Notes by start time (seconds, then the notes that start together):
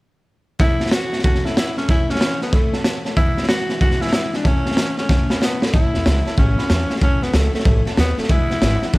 0.59 A2 E3 A3 C#4 E4 C#5 E5 A5, kick, snare
0.80 A3 C#4 E4 C#5 E5 A5, snare
0.86 snare
0.91 E3 A3 C#4 E4 F#4 C#5 E5 F#5, snare, hi-hat pedal
1.12 A3 C#4 E4 C#5 E5 F#5, snare
1.19 snare
1.24 A2 E3 A3 C#4 E4 F#4 C#5 E5 A5, kick, snare
1.35 snare
1.44 A3 C#4 E4 C#5 E5 A5, snare
1.56 E3 A3 C#4 E4 C#5 F#5, snare, hi-hat pedal
1.76 A3 C#4 E4 C#5 E5 A5, snare
1.88 A2 E3 A3 C#4 E4 C#5 E5 G#5, kick, snare
2.09 A3 C#4 E4 C#5 E5 G#5, snare
2.15 snare
2.21 E3 A3 C#4 E4 C#5 E5 B5, snare, hi-hat pedal
2.40 A3 B3 C#4 E4 C#5 E5 A5, snare
2.52 A2 E3 A3 C#4 E4 C#5 E5 B5, kick, snare
2.73 A3 C#4 E4 C#5 E5 A5, snare
2.84 E3 A3 C#4 E4 C#5 E5 A5, snare, hi-hat pedal
3.04 A3 C#4 E4 C#5 E5 A5, snare
3.16 E2 B2 E3 G#3 D4 E4 B4 G#5, kick, snare
3.37 E3 G#3 D4 E4 B4 E5 B5, snare
3.43 snare
3.49 E3 G#3 D4 E4 F#4 B4 E5 B5, snare, hi-hat pedal
3.69 E3 G#3 D4 E4 B4 E5 G#5, snare
3.81 E2 B2 E3 G#3 D4 E4 F#4 B4 E5 G#5, kick, snare
3.91 snare
4.00 G#3 D4 E4 B4 E5 G#5, snare
4.04 E3, snare
4.12 E3 G#3 D4 E4 B4 E5 F#5, snare, hi-hat pedal
4.16 E4
4.32 G#3 D4 E4 B4 G#5, snare
4.37 E3
4.43 A2 E3 A3 C#4 C#5 E5 A5, kick, snare
4.47 E4
4.65 A3 C#4 E4 C#5 E5 A5, snare
4.72 snare
4.77 E3 A3 C#4 E4 C#5 E5 A5, snare, hi-hat pedal
4.97 A3 C#4 E4 C#5 E5 F#5, snare
5.09 A2 E3 A3 C#4 E4 C#5 E5 A5, kick, snare
5.29 A3 C#4 E4 C#5 E5 B5, snare
5.40 E3 A3 B3 C#4 E4 C#5 E5 A5, snare, hi-hat pedal
5.61 A3 C#4 E4 C#5 E5 B5, snare
5.73 A1 A2 E3 A3 C#4 E4 C#5 E5 A5, kick, snare
5.93 E2 A3 C#4 E4 C#5 E5 B5, snare
6.04 C#2 E3 A3 C#4 E4 C#5 A5, snare, hi-hat pedal
6.25 A3 C#4 E4 C#5 E5 A5, snare
6.37 A1 A2 E3 A3 C#4 E4 C#5 E5 F#5, kick, snare
6.58 A3 C#4 E4 C#5 E5 B5, snare
6.70 E2 E3 A3 C#4 E4 C#5 E5 A5, snare, hi-hat pedal
6.89 A3 C#4 E4 C#5 E5 F#5, snare
6.96 snare
7.01 A1 A2 E3 A3 C#4 E4 C#5 E5 A5, kick, snare
7.21 E2 A3 B3 C#4 E4 C#5 E5 G#5, snare
7.33 C#2 E3 A3 C#4 E4 C#5 E5 A5, snare, hi-hat pedal
7.53 A3 C#4 E4 C#5 E5 F#5, snare
7.60 snare
7.65 A1 A2 E3 A3 C#4 E4 C#5 E5 A5, kick, snare
7.85 A3 C#4 E4 C#5 E5 A5, muted upright bass stroke, snare
7.96 D#2 E3 A3 B3 C#4 E4 C#5 E5 F#5, snare, hi-hat pedal
8.17 A3 C#4 E4 C#5 E5 A5, muted upright bass stroke, snare
8.23 snare
8.29 E1 E2 B2 E3 G#3 D4 E4 B4 E5 G#5, kick, snare
8.49 B1 E3 G#3 D4 E4 B4 F#5, snare
8.61 G#1 E3 G#3 D4 E4 B4 E5 G#5, snare, hi-hat pedal
8.82 E3 G#3 D4 E4 B4 E5 F#5, muted upright bass stroke, snare
8.88 E4
8.93 E1 E2 B2 E3 G#3 D4 E4 B4, kick, snare